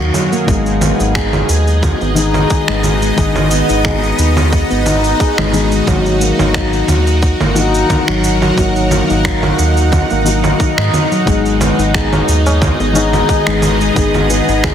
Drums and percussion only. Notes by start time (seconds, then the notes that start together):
0.14 low conga, shaker
0.33 shaker
0.48 kick, shaker
0.66 shaker
0.81 low conga, shaker
1.00 shaker
1.15 finger snap, kick, shaker
1.33 low conga, shaker
1.49 shaker
1.67 shaker
1.83 kick, low conga, shaker
2.01 shaker
2.16 shaker
2.34 low conga, shaker
2.50 kick, shaker
2.68 finger snap, shaker
2.83 low conga, shaker
3.02 shaker
3.18 kick, shaker
3.36 low conga, shaker
3.51 shaker
3.69 shaker
3.85 finger snap, kick, low conga, shaker
4.03 shaker
4.19 shaker
4.37 low conga, shaker
4.53 kick, shaker
4.71 shaker
4.86 low conga, shaker
5.04 shaker
5.20 kick, shaker
5.38 finger snap, low conga, shaker
5.54 shaker
5.72 shaker
5.87 kick, low conga, shaker
6.06 shaker
6.21 shaker
6.39 low conga, shaker
6.54 finger snap, kick, shaker
6.73 shaker
6.88 low conga, shaker
7.07 shaker
7.22 kick, shaker
7.40 low conga, shaker
7.56 shaker
7.74 shaker
7.90 kick, low conga, shaker
8.08 finger snap, shaker
8.24 shaker
8.42 low conga, shaker
8.58 kick, shaker
8.76 shaker
8.91 low conga, shaker
9.10 shaker
9.25 finger snap, kick, shaker
9.43 low conga, shaker
9.59 shaker
9.77 shaker
9.92 kick, low conga, shaker
10.10 shaker
10.26 shaker
10.44 low conga, shaker
10.60 kick, shaker
10.78 finger snap, shaker
10.94 low conga, shaker
11.12 shaker
11.27 kick, shaker
11.46 shaker
11.61 tabla tin, low conga, shaker
11.79 shaker
11.94 finger snap, kick, shaker
12.12 tabla na, low conga, shaker
12.28 tabla ge, shaker
12.46 tabla na, tabla tin, tabla ge, shaker
12.62 kick, low conga, shaker
12.80 shaker
12.95 tabla na, shaker
13.13 low conga, shaker
13.29 kick, shaker
13.47 finger snap, tabla tin, shaker
13.62 low conga, shaker
13.81 shaker
13.96 kick, shaker
14.14 low conga, shaker
14.30 tabla tin, shaker
14.49 shaker
14.64 finger snap, kick, low conga, shaker